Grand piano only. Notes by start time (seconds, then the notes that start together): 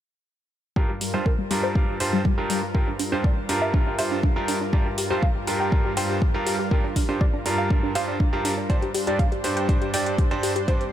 0.76 G2 G3 F4 A#4
1.14 G2 G3 F4 C5
1.51 G2 G3 F4 A#4
1.75 G2 G3 F4 A#4
2.00 G2 G3 F4 C5
2.38 G2 G3 F4 A#4
2.75 G2 G3 F4 A#4
3.12 G2 G3 F4 C5
3.49 G2 G3 F4 A#4
3.74 G2 G3 F4
3.99 G2 G3 F4 C5
4.36 G2 G3 F4 A#4
4.73 G2 G3 F4 A#4
5.10 G2 G3 F4 C5
5.47 G2 G3 F4 A#4
5.72 G2 G3 F4 A#4
5.97 G2 G3 F4 C5
6.34 G2 G3 F4 A#4
6.71 G2 G3 F4 A#4
7.09 G2 G3 F4 C5
7.46 G2 G3 F4 A#4
7.95 G2 G3 F4 C5
8.33 G2 G3 F4 A#4
8.70 G2 G3 D4 C5
9.07 G2 G3 D4 D5
9.44 G2 G3 D4 C5
9.69 G2 G3 D4 C5
9.94 G2 G3 D4 D5
10.31 G2 G3 D4 C5
10.68 G2 G3 D4 C5